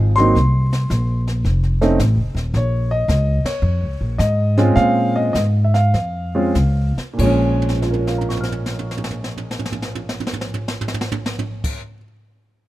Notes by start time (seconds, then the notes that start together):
Already playing: G#1 F3 G#3 C4 D#4
0.16 F#3 A#3 C4 D#4 C6, snare
0.35 C2, brush sweep, kick, snare
0.73 snare
0.90 A#1, kick, snare, hi-hat pedal
1.27 snare
1.44 F1, brush sweep, kick, snare
1.63 snare
1.81 A3 C4 C#4 D#4, snare
1.99 A1, kick, snare, hi-hat pedal
2.15 F1
2.35 D#1, snare
2.54 A#1 C#5, brush sweep, kick, snare
2.91 D#5
3.08 C#2, snare, hi-hat pedal
3.44 C#5, muted upright bass stroke, snare, ride
3.62 F2, brush sweep
3.81 C#2
4.01 A#1
4.18 G#2 D#5, snare, hi-hat pedal
4.57 G#3 C4 C#4 F4, snare
4.76 A#2 F5, brush sweep, snare
5.16 D#5
5.33 G#2 D#5, kick, snare, hi-hat pedal
5.64 E5
5.74 F5, snare
5.94 F2, brush sweep, kick, snare
6.35 G#3 C4 C#4 F4
6.55 C#2, kick, snare, hi-hat pedal
6.97 muted upright bass stroke, snare
7.13 A#2
7.18 A#1 F3 G#3 C#5, kick, crash
7.26 C#4
7.62 floor tom
7.69 snare
7.75 floor tom
7.82 F4, snare
7.91 A#4, floor tom
7.99 C#5
8.07 F5, snare
8.18 A#5, floor tom
8.29 C#6, snare
8.37 F6, floor tom
8.43 snare
8.52 floor tom
8.66 snare
8.79 floor tom
8.91 snare
8.97 floor tom
9.04 snare
9.11 floor tom
9.24 snare
9.37 floor tom
9.51 snare
9.59 floor tom
9.66 snare
9.72 floor tom
9.82 snare
9.95 floor tom
10.09 snare
10.20 floor tom
10.27 snare
10.33 floor tom
10.41 snare
10.54 floor tom
10.68 snare
10.81 floor tom
10.88 snare
10.94 floor tom
11.01 snare
11.12 floor tom
11.26 snare
11.39 floor tom
11.64 kick, crash